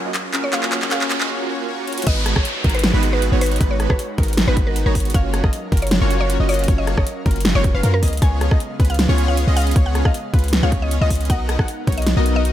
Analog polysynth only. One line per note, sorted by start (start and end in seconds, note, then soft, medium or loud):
0.05 0.13 A#3 medium
0.05 0.13 C#4 medium
0.05 0.13 F4 medium
0.05 0.13 F#4 medium
0.05 0.13 D#5 medium
0.34 0.47 A#3 medium
0.34 0.47 C#4 medium
0.34 0.47 F4 medium
0.34 0.47 F#4 medium
0.34 0.47 A#4 medium
0.53 0.80 A#3 loud
0.53 0.80 C#4 medium
0.53 0.80 F4 medium
0.53 0.80 F#4 medium
0.53 0.80 C#5 loud
0.82 0.90 A#3 medium
0.82 0.90 C#4 medium
0.82 0.90 F4 medium
0.82 0.90 F#4 medium
0.82 0.90 D#5 medium
0.91 1.18 A#3 medium
0.91 1.18 C#4 medium
0.91 1.18 F4 medium
0.91 1.18 F#4 medium
0.91 1.18 C#5 loud
1.21 1.28 A#3 medium
1.21 1.28 C#4 medium
1.21 1.28 F4 medium
1.21 1.28 F#4 medium
1.21 1.28 D#5 medium
1.30 1.48 A#3 medium
1.30 1.48 C#4 medium
1.30 1.48 F4 medium
1.30 1.48 F#4 medium
1.30 1.48 C#5 loud
1.49 1.67 A#3 loud
1.49 1.67 C#4 medium
1.49 1.67 F4 medium
1.49 1.67 F#4 medium
1.49 1.67 C#5 loud
1.68 1.86 A#3 loud
1.68 1.86 C#4 medium
1.68 1.86 F4 medium
1.68 1.86 F#4 medium
1.68 1.86 C#5 loud
1.88 2.05 A#3 medium
1.88 2.05 C#4 medium
1.88 2.05 F4 medium
1.88 2.05 F#4 medium
1.88 2.05 C#5 loud
2.07 2.34 G#3 loud
2.07 2.34 B3 medium
2.07 2.34 D#4 medium
2.07 2.34 F#4 medium
2.07 2.34 B4 loud
2.36 2.44 G#3 medium
2.36 2.44 B3 medium
2.64 2.77 G#3 medium
2.64 2.77 B3 medium
2.64 2.77 D#4 medium
2.64 2.77 F#4 medium
2.64 2.77 A#4 medium
2.94 3.30 G#3 loud
2.94 3.30 B3 medium
2.94 3.30 D#4 medium
2.94 3.30 F#4 medium
2.94 3.30 B4 loud
3.32 3.58 G#3 medium
3.32 3.58 B3 medium
3.32 3.58 D#4 medium
3.32 3.58 F#4 medium
3.32 3.58 C#5 medium
3.61 3.87 G#3 loud
3.61 3.87 B3 medium
3.61 3.87 D#4 medium
3.61 3.87 F#4 medium
3.61 3.87 B4 loud
3.90 3.97 G#3 medium
3.90 3.97 B3 medium
3.90 3.97 D#4 medium
3.90 3.97 F#4 medium
3.90 3.97 C#5 medium
4.18 4.31 G#3 medium
4.18 4.31 B3 medium
4.18 4.31 D#4 medium
4.18 4.31 F#4 medium
4.18 4.31 A#4 loud
4.48 4.84 G#3 loud
4.48 4.84 B3 medium
4.48 4.84 D#4 medium
4.48 4.84 F#4 medium
4.48 4.84 B4 loud
4.86 5.12 G#3 medium
4.86 5.12 B3 medium
4.86 5.12 D#4 medium
4.86 5.12 F#4 medium
4.86 5.12 C#5 loud
5.14 5.41 A#3 medium
5.14 5.41 C#4 medium
5.14 5.41 F4 medium
5.14 5.41 F#4 medium
5.14 5.41 C#5 loud
5.44 5.51 A#3 medium
5.44 5.51 C#4 medium
5.44 5.51 F4 medium
5.44 5.51 F#4 medium
5.44 5.51 D#5 medium
5.72 5.85 A#3 medium
5.72 5.85 C#4 medium
5.72 5.85 F4 medium
5.72 5.85 F#4 medium
5.72 5.85 A#4 medium
6.01 6.37 A#3 loud
6.01 6.37 C#4 medium
6.01 6.37 F4 medium
6.01 6.37 F#4 medium
6.01 6.37 C#5 loud
6.40 6.66 A#3 medium
6.40 6.66 C#4 medium
6.40 6.66 F4 medium
6.40 6.66 F#4 medium
6.40 6.66 D#5 medium
6.68 6.95 A#3 loud
6.68 6.95 C#4 medium
6.68 6.95 F4 medium
6.68 6.95 F#4 medium
6.68 6.95 C#5 loud
6.98 7.05 A#3 medium
6.98 7.05 C#4 medium
6.98 7.05 F#4 medium
6.98 7.05 D#5 medium
7.26 7.39 A#3 medium
7.26 7.39 C#4 medium
7.26 7.39 F4 medium
7.26 7.39 F#4 medium
7.26 7.39 A#4 medium
7.55 7.72 A#3 loud
7.55 7.72 C#4 medium
7.55 7.72 F4 medium
7.55 7.72 F#4 medium
7.55 7.72 C#5 loud
7.74 7.81 A#3 loud
7.74 7.81 C#4 medium
7.74 7.81 F4 medium
7.74 7.81 F#4 medium
7.74 7.81 F5 loud
7.84 7.92 A#3 medium
7.84 7.92 C#4 medium
7.84 7.92 F4 medium
7.84 7.92 F#4 medium
7.84 7.92 A#4 medium
8.03 8.11 B3 medium
8.03 8.11 C#4 medium
8.03 8.11 F4 medium
8.03 8.11 G#4 medium
8.03 8.11 D#5 medium
8.22 8.49 B3 medium
8.22 8.49 C#4 medium
8.22 8.49 F4 medium
8.22 8.49 G#4 medium
8.22 8.49 C#5 loud
8.51 8.59 B3 medium
8.51 8.59 C#4 medium
8.51 8.59 F4 medium
8.51 8.59 G#4 medium
8.51 8.59 D#5 medium
8.80 8.93 B3 medium
8.80 8.93 C#4 medium
8.80 8.93 F4 medium
8.80 8.93 G#4 medium
8.80 8.93 B4 medium
9.09 9.45 B3 medium
9.09 9.45 C#4 medium
9.09 9.45 F4 medium
9.09 9.45 G#4 medium
9.09 9.45 C#5 loud
9.48 9.74 B3 medium
9.48 9.74 C#4 medium
9.48 9.74 F4 medium
9.48 9.74 G#4 medium
9.48 9.74 D#5 loud
9.76 10.03 B3 loud
9.76 10.03 C#4 medium
9.76 10.03 F4 medium
9.76 10.03 C#5 loud
10.05 10.13 B3 medium
10.05 10.13 C#4 medium
10.05 10.13 F4 medium
10.05 10.13 G#4 medium
10.05 10.13 D#5 medium
10.34 10.47 B3 medium
10.34 10.47 C#4 medium
10.34 10.47 F4 medium
10.34 10.47 G#4 medium
10.34 10.47 B4 medium
10.63 10.99 B3 medium
10.63 10.99 C#4 medium
10.63 10.99 F4 medium
10.63 10.99 G#4 medium
10.63 10.99 C#5 loud
11.01 11.28 B3 medium
11.01 11.28 C#4 medium
11.01 11.28 F4 medium
11.01 11.28 G#4 medium
11.01 11.28 D#5 loud
11.30 11.57 B3 loud
11.30 11.57 D#4 medium
11.30 11.57 F#4 medium
11.30 11.57 A#4 medium
11.30 11.57 D#5 loud
11.59 11.67 B3 medium
11.59 11.67 D#4 medium
11.59 11.67 F#4 medium
11.59 11.67 A#4 medium
11.59 11.67 F#5 medium
11.87 12.00 B3 medium
11.87 12.00 D#4 medium
11.87 12.00 F#4 medium
11.87 12.00 A#4 medium
11.87 12.00 C#5 loud
12.17 12.52 B3 medium
12.17 12.52 D#4 medium
12.17 12.52 F#4 medium
12.17 12.52 A#4 medium
12.17 12.52 D#5 loud